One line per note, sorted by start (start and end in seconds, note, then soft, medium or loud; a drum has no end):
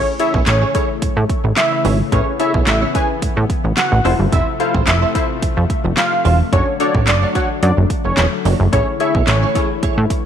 0.00 4.01 C#3 medium
0.00 4.01 E3 medium
0.00 2.10 A3 medium
0.00 0.12 C#4 medium
0.00 0.12 C#5 loud
0.06 muted clean electric guitar stroke soft
0.19 0.34 C#4 medium
0.19 0.53 E4 medium
0.19 0.34 E4 medium
0.19 0.53 G#4 medium
0.19 0.33 G#4 medium
0.19 0.54 A4 medium
0.19 0.54 C#5 medium
0.19 0.33 C#5 medium
0.19 0.39 E5 medium
0.19 closed hi-hat medium
0.34 0.42 B1 loud
0.34 0.46 C#4 medium
0.34 0.46 E4 medium
0.34 0.46 G#4 medium
0.34 0.46 C#5 medium
0.34 kick loud
0.46 0.64 A1 loud
0.46 0.67 C#5 medium
0.46 muted clean electric guitar stroke medium
0.46 snare medium
0.46 clap loud
0.46 closed hi-hat loud
0.61 0.73 C#4 medium
0.61 0.74 E4 medium
0.61 0.74 G#4 medium
0.61 0.74 C#5 medium
0.74 0.95 C#4 medium
0.74 1.42 E4 medium
0.74 0.89 E4 loud
0.74 1.42 G#4 medium
0.74 0.88 G#4 loud
0.74 1.42 A4 medium
0.74 0.85 C#5 medium
0.74 1.42 C#5 medium
0.74 0.88 C#5 loud
0.74 kick loud
0.74 closed hi-hat medium
0.89 muted clean electric guitar stroke medium
1.02 1.08 A2 soft
1.02 muted clean electric guitar stroke soft
1.02 kick medium
1.02 closed hi-hat loud
1.17 1.25 A2 medium
1.17 muted clean electric guitar stroke soft
1.30 kick loud
1.30 closed hi-hat medium
1.44 1.52 A1 medium
1.44 muted clean electric guitar stroke soft
1.57 1.97 E5 medium
1.57 muted clean electric guitar stroke soft
1.57 snare loud
1.57 clap medium
1.57 clap loud
1.57 closed hi-hat loud
1.72 muted clean electric guitar stroke soft
1.84 2.02 G#1 medium
1.84 2.05 C#4 medium
1.84 1.99 E4 medium
1.84 1.98 G#4 medium
1.84 1.98 C#5 medium
1.84 open hi-hat medium
1.99 muted clean electric guitar stroke soft
2.12 2.21 A1 loud
2.12 4.03 B3 medium
2.12 2.32 C#4 medium
2.12 2.30 E4 medium
2.12 2.26 E4 loud
2.12 2.30 G#4 medium
2.12 2.26 G#4 loud
2.12 2.30 A4 medium
2.12 2.30 B4 medium
2.12 2.32 C#5 loud
2.12 2.25 C#5 loud
2.12 kick loud
2.12 closed hi-hat loud
2.27 muted clean electric guitar stroke medium
2.39 2.54 C#4 medium
2.39 2.73 E4 medium
2.39 2.54 E4 medium
2.39 2.74 G#4 medium
2.39 2.53 G#4 medium
2.39 2.74 A4 medium
2.39 2.74 C#5 medium
2.39 2.53 C#5 medium
2.39 2.59 E5 medium
2.39 closed hi-hat medium
2.54 2.62 B1 loud
2.54 2.66 C#4 medium
2.54 2.66 E4 medium
2.54 2.66 G#4 medium
2.54 2.67 C#5 medium
2.54 kick loud
2.67 2.84 A1 loud
2.67 2.87 E5 medium
2.67 muted clean electric guitar stroke soft
2.67 snare medium
2.67 clap loud
2.67 closed hi-hat loud
2.82 2.93 C#4 medium
2.82 2.94 E4 medium
2.82 2.94 G#4 medium
2.82 2.94 C#5 medium
2.94 3.15 C#4 medium
2.94 3.62 E4 medium
2.94 3.09 E4 medium
2.94 3.62 G#4 medium
2.94 3.08 G#4 loud
2.94 3.63 A4 medium
2.94 3.63 B4 medium
2.94 3.08 C#5 medium
2.94 3.05 G#5 medium
2.94 kick loud
2.94 closed hi-hat medium
3.09 muted clean electric guitar stroke soft
3.22 3.28 A2 soft
3.22 muted clean electric guitar stroke soft
3.22 kick medium
3.22 closed hi-hat loud
3.37 3.45 A2 medium
3.37 muted clean electric guitar stroke medium
3.50 kick medium
3.50 closed hi-hat medium
3.64 3.73 A1 medium
3.64 muted clean electric guitar stroke soft
3.77 4.17 F#5 medium
3.77 muted clean electric guitar stroke soft
3.77 snare loud
3.77 clap medium
3.77 clap loud
3.77 closed hi-hat loud
3.92 4.00 A1 loud
3.92 muted clean electric guitar stroke medium
4.05 4.14 F1 loud
4.05 6.50 C3 medium
4.05 6.50 F3 medium
4.05 6.50 A3 medium
4.05 4.25 C4 loud
4.05 4.50 E4 medium
4.05 4.19 E4 medium
4.05 4.50 F4 medium
4.05 4.50 A4 medium
4.05 4.18 A4 medium
4.05 4.50 C5 medium
4.05 4.18 C5 loud
4.05 open hi-hat medium
4.19 4.27 G1 medium
4.19 muted clean electric guitar stroke soft
4.32 4.41 F1 loud
4.32 4.52 C4 medium
4.32 4.46 E4 medium
4.32 4.46 A4 medium
4.32 4.46 C5 medium
4.32 4.52 E5 loud
4.32 kick loud
4.32 closed hi-hat loud
4.47 muted clean electric guitar stroke soft
4.60 4.74 C4 medium
4.60 4.94 E4 medium
4.60 4.74 E4 medium
4.60 4.94 F4 medium
4.60 4.94 A4 medium
4.60 4.74 A4 medium
4.60 4.94 C5 medium
4.60 4.73 C5 medium
4.60 4.79 F5 medium
4.60 closed hi-hat medium
4.74 4.82 A1 loud
4.74 4.86 C4 medium
4.74 4.86 E4 medium
4.74 4.87 A4 medium
4.74 4.87 C5 medium
4.74 kick loud
4.87 5.04 F1 loud
4.87 5.07 E5 medium
4.87 muted clean electric guitar stroke soft
4.87 snare medium
4.87 clap loud
4.87 closed hi-hat loud
5.02 5.14 C4 medium
5.02 5.14 E4 medium
5.02 5.14 A4 medium
5.02 5.15 C5 medium
5.15 5.35 C4 medium
5.15 5.83 E4 medium
5.15 5.29 E4 medium
5.15 5.83 F4 medium
5.15 5.83 A4 medium
5.15 5.29 A4 medium
5.15 5.83 C5 medium
5.15 5.28 C5 medium
5.15 5.25 E5 medium
5.15 kick loud
5.15 closed hi-hat medium
5.29 muted clean electric guitar stroke medium
5.42 5.48 F2 soft
5.42 muted clean electric guitar stroke soft
5.42 kick loud
5.42 closed hi-hat loud
5.57 5.65 F2 medium
5.57 muted clean electric guitar stroke medium
5.70 kick medium
5.70 closed hi-hat medium
5.84 5.93 F1 loud
5.84 muted clean electric guitar stroke medium
5.97 6.37 F5 medium
5.97 muted clean electric guitar stroke soft
5.97 snare loud
5.97 clap loud
5.97 clap medium
5.97 closed hi-hat loud
6.12 muted clean electric guitar stroke medium
6.25 6.42 E1 medium
6.25 6.45 C4 loud
6.25 6.39 E4 medium
6.25 6.39 A4 loud
6.25 6.38 C5 loud
6.25 open hi-hat medium
6.40 muted clean electric guitar stroke medium
6.52 6.62 F#1 loud
6.52 10.25 D3 medium
6.52 8.71 F#3 medium
6.52 6.72 A3 medium
6.52 10.25 A3 medium
6.52 6.70 D4 medium
6.52 8.71 D4 medium
6.52 6.67 D4 medium
6.52 6.70 F#4 medium
6.52 6.66 F#4 loud
6.52 6.70 A4 medium
6.52 6.72 C#5 loud
6.52 6.70 C#5 medium
6.52 6.66 C#5 loud
6.52 kick loud
6.52 closed hi-hat loud
6.67 muted clean electric guitar stroke medium
6.80 6.94 A3 medium
6.80 7.14 D4 medium
6.80 6.94 D4 medium
6.80 7.14 F#4 medium
6.80 6.94 F#4 medium
6.80 7.14 A4 medium
6.80 7.14 C#5 medium
6.80 6.93 C#5 medium
6.80 7.00 D5 medium
6.80 closed hi-hat medium
6.95 7.09 A1 medium
6.95 7.06 A3 medium
6.95 7.07 D4 medium
6.95 7.07 F#4 medium
6.95 7.07 C#5 medium
6.95 kick loud
7.07 7.25 F#1 loud
7.07 7.27 D5 medium
7.07 muted clean electric guitar stroke soft
7.07 snare medium
7.07 clap loud
7.07 closed hi-hat loud
7.22 7.34 A3 medium
7.22 7.34 D4 medium
7.22 7.35 F#4 medium
7.22 7.35 C#5 medium
7.35 7.55 A3 medium
7.35 8.03 D4 medium
7.35 7.49 D4 loud
7.35 8.03 F#4 medium
7.35 7.49 F#4 loud
7.35 8.03 A4 medium
7.35 8.03 C#5 medium
7.35 7.49 C#5 loud
7.35 7.46 F#5 medium
7.35 kick medium
7.35 closed hi-hat medium
7.50 muted clean electric guitar stroke medium
7.63 7.72 F#2 loud
7.63 7.73 D5 medium
7.63 closed hi-hat loud
7.77 7.85 F#1 medium
7.77 muted clean electric guitar stroke soft
7.90 kick medium
7.90 closed hi-hat medium
8.05 8.13 F#1 medium
8.05 8.24 C#5 medium
8.05 muted clean electric guitar stroke medium
8.17 8.27 E1 loud
8.17 muted clean electric guitar stroke soft
8.17 snare loud
8.17 clap loud
8.17 clap medium
8.17 closed hi-hat loud
8.32 muted clean electric guitar stroke soft
8.45 8.54 F#1 medium
8.45 8.65 A3 medium
8.45 8.59 D4 medium
8.45 8.59 F#4 medium
8.45 8.59 C#5 medium
8.45 open hi-hat medium
8.60 8.68 F#1 loud
8.60 muted clean electric guitar stroke medium
8.72 8.82 A1 loud
8.72 10.25 E3 medium
8.72 8.93 A3 medium
8.72 8.90 E4 medium
8.72 8.87 E4 medium
8.72 10.25 E4 loud
8.72 8.90 G#4 medium
8.72 8.86 G#4 medium
8.72 8.90 A4 medium
8.72 8.92 C#5 loud
8.72 8.90 C#5 medium
8.72 8.86 C#5 medium
8.72 kick loud
8.72 closed hi-hat loud
8.87 muted clean electric guitar stroke medium
9.00 9.15 A3 medium
9.00 9.34 E4 medium
9.00 9.14 E4 medium
9.00 9.34 G#4 medium
9.00 9.14 G#4 medium
9.00 9.34 A4 medium
9.00 9.34 C#5 medium
9.00 9.14 C#5 medium
9.00 9.20 E5 medium
9.00 closed hi-hat medium
9.15 9.23 B1 medium
9.15 9.27 A3 medium
9.15 9.27 E4 medium
9.15 9.27 G#4 medium
9.15 9.27 C#5 medium
9.15 kick loud
9.27 9.45 A1 loud
9.27 9.47 C#5 medium
9.27 muted clean electric guitar stroke soft
9.27 snare medium
9.27 clap loud
9.27 closed hi-hat loud
9.42 9.54 A3 medium
9.42 9.54 E4 medium
9.42 9.55 G#4 medium
9.42 9.55 C#5 medium
9.55 9.75 A3 loud
9.55 10.23 E4 medium
9.55 9.69 E4 loud
9.55 10.23 G#4 medium
9.55 9.69 G#4 loud
9.55 10.23 A4 medium
9.55 9.66 C#5 medium
9.55 10.23 C#5 medium
9.55 9.69 C#5 loud
9.55 kick loud
9.55 closed hi-hat medium
9.70 muted clean electric guitar stroke soft
9.83 9.89 A2 soft
9.83 10.03 A3 medium
9.83 9.97 E4 medium
9.83 9.97 G#4 medium
9.83 9.96 C#5 medium
9.83 kick medium
9.83 closed hi-hat loud
9.97 10.06 A2 loud
9.97 muted clean electric guitar stroke medium
10.10 muted clean electric guitar stroke soft
10.10 kick medium
10.10 closed hi-hat medium